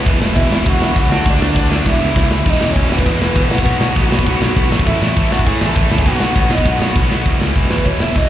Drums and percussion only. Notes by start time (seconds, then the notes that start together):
0.06 kick, ride
0.22 snare
0.36 kick, ride
0.52 snare
0.66 kick, ride
0.82 snare
0.96 kick, ride
1.12 snare
1.26 kick, ride
1.42 snare
1.56 kick, ride
1.72 snare
1.86 kick, snare
2.16 kick, snare
2.31 snare
2.46 kick, crash
2.61 snare
2.75 kick, crash
2.92 snare
2.99 kick
3.06 kick, crash
3.22 snare
3.35 kick, crash
3.51 snare
3.58 kick
3.65 kick, crash
3.81 snare
3.96 kick, crash
4.12 snare
4.19 kick
4.27 kick, crash
4.42 snare
4.57 kick, crash
4.72 snare
4.79 kick
4.87 kick, crash
5.03 snare
5.17 kick, crash
5.32 snare
5.39 kick
5.47 kick, crash
5.61 snare
5.76 kick, crash
5.91 snare
5.98 kick
6.06 kick, crash
6.20 snare
6.36 kick, crash
6.51 snare
6.58 kick
6.65 kick, crash
6.82 snare
6.95 kick, crash
7.12 snare
7.26 kick, open hi-hat
7.41 snare
7.56 kick, open hi-hat
7.71 snare
7.78 kick
7.85 kick, open hi-hat
8.00 snare
8.15 kick, open hi-hat